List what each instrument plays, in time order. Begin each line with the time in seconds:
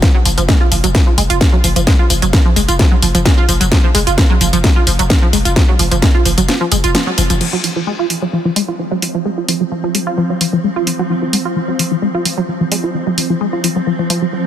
0.02 synth arpeggio sound F3, kick, snare, closed hi-hat, tambourine
0.15 synth arpeggio sound F#3
0.25 808-style bass F1, synth arpeggio sound F3, open hi-hat, tambourine
0.38 808-style bass F1, synth arpeggio sound F3, closed hi-hat, tambourine
0.48 synth arpeggio sound G#3, kick, snare, closed hi-hat, tambourine
0.61 synth arpeggio sound F4
0.72 808-style bass F1, synth arpeggio sound F3, open hi-hat, tambourine
0.84 808-style bass F1, synth arpeggio sound F#3, closed hi-hat, tambourine
0.95 synth arpeggio sound F3, kick, snare, closed hi-hat, tambourine
1.07 synth arpeggio sound F3
1.18 808-style bass F1, synth arpeggio sound G#3, open hi-hat, tambourine
1.30 808-style bass F1, synth arpeggio sound F4, closed hi-hat, tambourine
1.41 synth arpeggio sound F3, kick, snare, closed hi-hat, tambourine
1.53 synth arpeggio sound F#3
1.64 808-style bass F1, synth arpeggio sound F3, open hi-hat, tambourine
1.76 808-style bass F1, synth arpeggio sound F3, closed hi-hat, tambourine
1.87 synth arpeggio sound G#3, kick, snare, closed hi-hat, tambourine
1.99 synth arpeggio sound F4
2.10 808-style bass F1, synth arpeggio sound F3, open hi-hat, tambourine
2.22 808-style bass F1, synth arpeggio sound F#3, closed hi-hat, tambourine
2.33 synth arpeggio sound F3, kick, snare, closed hi-hat, tambourine
2.45 synth arpeggio sound F3
2.56 808-style bass F1, synth arpeggio sound G#3, open hi-hat, tambourine
2.68 808-style bass F1, synth arpeggio sound F4, closed hi-hat, tambourine
2.79 synth arpeggio sound F3, kick, snare, closed hi-hat, tambourine
2.91 synth arpeggio sound F#3
3.02 808-style bass F1, synth arpeggio sound F3, open hi-hat, tambourine
3.15 808-style bass F1, synth arpeggio sound F3, closed hi-hat, tambourine
3.25 synth arpeggio sound G#3, kick, snare, closed hi-hat, tambourine
3.38 synth arpeggio sound F4
3.49 808-style bass F1, synth arpeggio sound F3, open hi-hat, tambourine
3.61 808-style bass F1, synth arpeggio sound F#3, closed hi-hat, tambourine
3.72 synth arpeggio sound F3, kick, snare, closed hi-hat
3.84 synth arpeggio sound F3
3.95 808-style bass F1, synth arpeggio sound G#3, open hi-hat, tambourine
4.07 808-style bass F1, synth arpeggio sound F4, closed hi-hat, tambourine
4.18 synth arpeggio sound F3, kick, snare, closed hi-hat, tambourine
4.30 synth arpeggio sound F#3
4.41 808-style bass F1, synth arpeggio sound F3, open hi-hat, tambourine
4.53 808-style bass F1, synth arpeggio sound F3, closed hi-hat, tambourine
4.64 synth arpeggio sound G#3, kick, snare, closed hi-hat, tambourine
4.76 synth arpeggio sound F4
4.87 808-style bass F1, synth arpeggio sound F3, open hi-hat, tambourine
4.99 808-style bass F1, synth arpeggio sound F#3, closed hi-hat, tambourine
5.10 synth arpeggio sound F3, kick, snare, closed hi-hat, tambourine
5.22 synth arpeggio sound F3
5.33 808-style bass F1, synth arpeggio sound G#3, open hi-hat, tambourine
5.45 808-style bass F1, synth arpeggio sound F4, closed hi-hat, tambourine
5.56 synth arpeggio sound F3, kick, snare, closed hi-hat, tambourine
5.68 synth arpeggio sound F#3
5.79 808-style bass F1, synth arpeggio sound F3, open hi-hat, tambourine
5.91 808-style bass F1, synth arpeggio sound F3, closed hi-hat, tambourine
6.02 synth arpeggio sound G#3, kick, snare, closed hi-hat, tambourine
6.15 synth arpeggio sound F4
6.25 808-style bass F1, synth arpeggio sound F3, open hi-hat, tambourine
6.38 808-style bass F1, synth arpeggio sound F#3, closed hi-hat, tambourine
6.49 synth arpeggio sound F3, snare, closed hi-hat, tambourine
6.61 synth arpeggio sound F3
6.72 808-style bass F1, synth arpeggio sound G#3, open hi-hat, tambourine
6.84 808-style bass F1, synth arpeggio sound F4, closed hi-hat, tambourine
6.95 synth arpeggio sound F3, snare, closed hi-hat, tambourine
7.07 synth arpeggio sound F#3
7.18 808-style bass F1, synth arpeggio sound F3, open hi-hat, tambourine
7.30 808-style bass F1, synth arpeggio sound F3, closed hi-hat, tambourine
7.41 synth drone F3 C4, synth arpeggio sound F3, crash
7.53 synth arpeggio sound F#3
7.64 synth arpeggio sound F3, open hi-hat
7.76 synth arpeggio sound F3
7.87 synth arpeggio sound G#3
7.99 synth arpeggio sound F4
8.10 synth arpeggio sound F3, open hi-hat
8.22 synth arpeggio sound F#3
8.33 synth arpeggio sound F3
8.45 synth arpeggio sound F3
8.56 synth arpeggio sound G#3, open hi-hat
8.68 synth arpeggio sound F4
8.79 synth arpeggio sound F3
8.91 synth arpeggio sound F#3
9.02 synth arpeggio sound F3, open hi-hat
9.15 synth arpeggio sound F3
9.25 synth arpeggio sound G#3
9.38 synth arpeggio sound F4
9.48 synth arpeggio sound F3, open hi-hat
9.61 synth arpeggio sound F#3
9.72 synth arpeggio sound F3
9.84 synth arpeggio sound F3
9.95 synth arpeggio sound G#3, open hi-hat
10.07 synth arpeggio sound F4
10.18 synth arpeggio sound F3
10.30 synth arpeggio sound F#3
10.41 synth arpeggio sound F3, open hi-hat
10.53 synth arpeggio sound F3
10.64 synth arpeggio sound G#3
10.76 synth arpeggio sound F4
10.87 synth arpeggio sound F3, open hi-hat
10.99 synth arpeggio sound F#3
11.10 synth arpeggio sound F3
11.22 synth arpeggio sound F3
11.33 synth arpeggio sound G#3, open hi-hat
11.45 synth arpeggio sound F4
11.56 synth arpeggio sound F3
11.68 synth arpeggio sound F#3
11.79 synth arpeggio sound F3, open hi-hat
11.91 synth arpeggio sound F3
12.02 synth arpeggio sound G#3
12.15 synth arpeggio sound F4
12.25 synth arpeggio sound F3, open hi-hat
12.38 synth arpeggio sound F#3
12.48 synth arpeggio sound F3
12.61 synth arpeggio sound F3
12.72 synth arpeggio sound G#3, open hi-hat
12.84 synth arpeggio sound F4
12.95 synth arpeggio sound F3
13.07 synth arpeggio sound F#3
13.18 synth arpeggio sound F3, open hi-hat
13.30 synth arpeggio sound F3
13.41 synth arpeggio sound G#3
13.53 synth arpeggio sound F4
13.64 synth arpeggio sound F3, open hi-hat
13.76 synth arpeggio sound F#3
13.87 synth arpeggio sound F3
13.99 synth arpeggio sound F3
14.10 synth arpeggio sound F3, open hi-hat
14.22 synth arpeggio sound F#3
14.33 synth arpeggio sound F#3